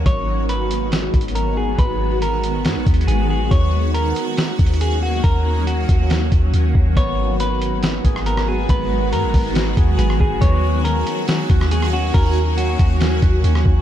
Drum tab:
HH |x-----------x-----x-----x-----x-x-x-x-----------|x-----------x-----x-----x-----x-x-x-x-----------|x-----------x-----x-----x-----x-x-x-x-----------|x-----------x-----x-----x-----x-----x-----------|
SD |------------------------o-----------------------|------------------------o-----------------------|------------------------o-----------------------|------------------------o-----------------------|
BD |o-----------------------------o-----------------|o-----------------------------o-----------------|o-----------------------------o-----------------|o-----------------o-----------o-----------o-----|

HH |x-----------x-----x-----x-----x-----x-----------|x-----------x-----o-----x-----x-----x-----------|x-----------x-----x-----x-----x-----x-----------|x-----------x-----x-----x-----x-----x-----------|
SD |------------------------o--------r-----r--------|------------------------o--------------r--------|------------------------o--------r-----r--------|------------------------o--------------r--------|
BD |o-----------------------------o-----------------|o-----------------o-----------o-----------o-----|o-----------------------------o-----------------|o-----------------o-----------o-----------o-----|